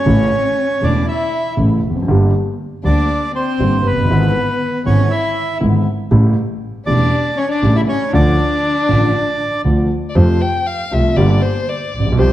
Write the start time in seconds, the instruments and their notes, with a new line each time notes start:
Already playing: violin C#4, bandoneon C#5
0.06 grand piano A1 A2 C#3 E3 A3 E4, double bass A1
0.82 double bass E1, grand piano E1 E2 C#3 E3 A3 E4, violin D4, bandoneon D5
1.08 violin E4, bandoneon E5
1.57 grand piano A1 A2 C#3 E3 A3 E4, double bass A1
1.83 double bass F1
1.89 grand piano E2
1.95 grand piano F2
2.02 grand piano F#2
2.08 double bass G1, grand piano G1 G2 D3 G3 A#3 G4
2.84 double bass D2, grand piano D2 D3 G3 A#3 G4, violin D4, bandoneon D5
3.35 violin C4, bandoneon C5
3.59 double bass G1, grand piano G1 G2 D3 G3 A#3 G4
3.85 double bass F#1, violin B3, bandoneon B4
3.91 grand piano F1
3.98 grand piano F#1
4.04 grand piano G1
4.09 double bass G#1, grand piano G#1 G#2 D3 G#3 B3 E4
4.86 double bass G#1, grand piano G#1 G#2 D3 G#3 B3 E4, violin C#4, bandoneon C#5
5.10 violin E4, bandoneon E5
5.60 grand piano G#1 G#2 D3 G#3 B3 E4, double bass G#1
6.11 grand piano A1 A2 C#3 G3 A3 E4, double bass A1
6.86 grand piano E1 E2 C#3 G3 A3 E4, double bass E1, violin D4, bandoneon D5
7.37 violin C#4, bandoneon C#5
7.50 violin D4, bandoneon D5
7.62 grand piano A1 A2 C#3 G3 A3 E4, double bass A1
7.75 violin E4, bandoneon E5
7.88 violin C#4, bandoneon C#5
8.13 grand piano D2 D3 F3 A3 F4, double bass D2, violin D4, bandoneon D5
8.88 grand piano A1 A2 D3 F3 A3 F4, double bass A1
9.64 double bass D2, grand piano D2 D3 F3 A3 F4
10.09 violin D5
10.15 grand piano F2 C3 F3 A3 F4, double bass F2, violin C5
10.41 violin G5
10.66 violin F5
10.91 double bass C2, grand piano C2 C3 F3 A3 F4, violin E5
11.16 double bass G1, grand piano G1 G2 D3 G3 A#3 G4, violin D5
11.42 violin C5
11.68 violin D5
11.93 double bass A#1
11.99 grand piano A1
12.06 grand piano A#1
12.12 grand piano B1
12.17 double bass C2, grand piano C2 C3 F3 G3 C4 G4, violin C5